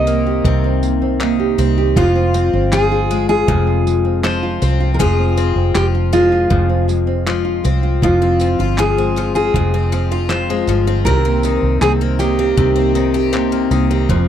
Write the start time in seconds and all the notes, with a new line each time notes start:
Already playing: C2 C3 D#3 C4 G4 D#5
0.07 A#3, tambourine
0.27 G4
0.45 C2 C3 D#3, kick
0.64 C4
0.83 A#3, tambourine
1.02 C4
1.20 D#3 A#3, clap
1.40 G4
1.58 C2 A#3 C4, tambourine
1.78 G4
1.96 F1 F2 G#3 F4, kick
2.16 C4
2.34 G#3 C4, tambourine
2.53 G1 C4
2.72 F3 G#3 G#4, clap
2.92 F4
3.11 G#3, tambourine
3.29 F4 G#4
3.48 F1 F2 G#3, kick
3.67 C4
3.87 G#3, tambourine
4.05 C4
4.23 F3 G#3 C5, clap
4.43 F4
4.62 C2 G#3 C4, tambourine
4.80 F4
4.94 A#4
4.99 F1 F2 G#3 F4 G#4, kick
5.18 C4
5.37 G#3 C4, tambourine
5.56 F1 C4
5.75 F1 F3 G#3 G4, clap
5.95 F4
6.13 G#3 F4, tambourine
6.32 F4
6.50 F1 F2 G#3, kick
6.69 C4
6.88 G#3, tambourine
7.07 C4
7.26 F3 G#3, clap
7.45 F4
7.64 C2 G#3 C4, tambourine
7.83 F4
8.02 F1 F2 G#3 F4, kick
8.21 G#3 C4
8.40 F3 C4, tambourine
8.59 G1 F4
8.78 F2 G#3 G#4, clap
8.97 G#3 C4
9.16 F3 G#3, tambourine
9.35 C4 F4 G#4
9.54 F1 F2 G#3 F4, kick
9.74 G#3 C4
9.92 F3 C4, tambourine
10.12 F4
10.29 F2 G#3 C5, clap
10.50 G#3 C4
10.67 G1 F3 G#3, tambourine
10.87 C4 F4
11.05 C2 C3 D#3 G4 A#4, kick
11.25 A#3 C4
11.43 D#3 C4, tambourine
11.63 C2
11.81 C2 C3 A#3 G#4, clap
12.01 A#3 C4
12.19 D#3 A#3 G4, tambourine
12.39 C4 G4
12.57 C2 C3 D#3 G4, kick
12.76 A#3 C4
12.95 D#3 C4, tambourine
13.14 G4
13.33 C3 A#3, clap
13.52 A#3 C4
13.71 C2 D#3 A#3, tambourine
13.91 C4 G4
14.09 F1 F2 F3 G#4, kick